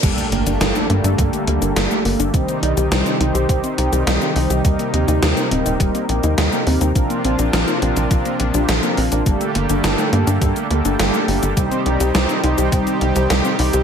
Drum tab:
CC |x---------------|----------------|----------------|----------------|
HH |xxxxxxxxxxxxx-ox|xxxxxxxxxxxxx-ox|xxxxxxxxxxxxx-ox|xxxxxxxxxxxxxxox|
SH |xx-xxx-xxx-xxx-x|xx-xxx-xxx-xxx-x|xx-xxx-xxx-xxx-x|xx-xxx-xxx-xxx-x|
SD |----o-------o---|----o-------o---|----o-------o---|----o-------o---|
BD |o-------o-------|o-------o-------|o-------o-------|o-------o-------|

CC |----------------|----------------|
HH |xxxxxxxxxxxxx-ox|xxxxxxxxxxxxx-ox|
SH |xx-xxx-xxx-xxx-x|xx-xxx-xxx-xxx-x|
SD |----o-------o---|----o-------o---|
BD |o-------o-------|o-------o-------|